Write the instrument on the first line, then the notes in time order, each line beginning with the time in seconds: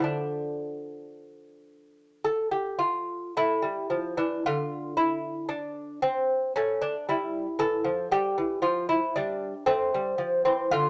lute
0.00 D3 F3 A3 D4
2.24 A4
2.51 G4
2.79 F4
3.37 A3 E4
3.62 G3
3.90 F3
4.17 E3 D4
4.46 D3 F4
4.97 E4
5.49 D4
6.02 C4
6.56 A3 C#4
6.82 D4
7.09 G3 E4
7.59 E3 A4
7.84 F3
8.12 G3 G4
8.38 E3
8.62 F3 F4
8.89 E4
9.16 G3 D4
9.66 A3 C4
9.94 G3
10.18 F3
10.45 E3 C4
10.71 D3 F4